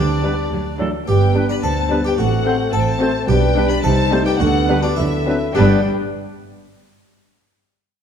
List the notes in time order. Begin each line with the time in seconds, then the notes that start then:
Already playing: D2 D3 D4 G4 D5
0.23 G3 B3 D4 B4
0.52 D2 F#3
0.79 E3 F#3 A3 D4 A4
1.07 G1 G2 B3 D4 G4 B4 G5
1.35 G3 B3 D4 B4
1.49 B4 D5 B5
1.63 D2 A4 C5 A5
1.91 G3 B3 D4 B4
2.04 G4 B4 G5
2.17 A1 A2 A3 C4 F#4 A4 F#5
2.46 A3 C4 F#4 C5
2.73 A1 A2 A4 C5 A5
2.81 G5
2.87 A5
3.01 A3 C4 F#4 C5
3.27 B1 B2 G3 D4 G4 B4 G5
3.56 G3 B3 D4 B4
3.70 B4 D5 B5
3.83 C2 C3 D#4 A4 C5 A5
4.12 G3 A3 C4 D#4 C5
4.25 G4 B4 G5
4.39 D2 D3 B3 F#4 A4 F#5
4.68 G3 B3 D4 B4
4.82 D4 F#4 D5
4.96 D2 D3 F#3 E4 A4 E5
5.26 F#3 B3 C4 D4 B4
5.55 G1 G2 G3 B3 D4 G4 B4 D5 G5